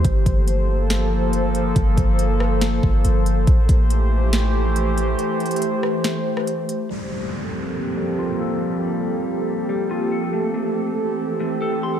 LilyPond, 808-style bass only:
\new Staff \with { instrumentName = "808-style bass" } { \clef bass \time 4/4 \key g \dorian \tempo 4 = 140 g,,8 g,,2.~ g,,8 | g,,8 g,,2 g,,8 g,,4 | a,,8 a,,2.~ a,,8 | r1 |
r1 | r1 | r1 | }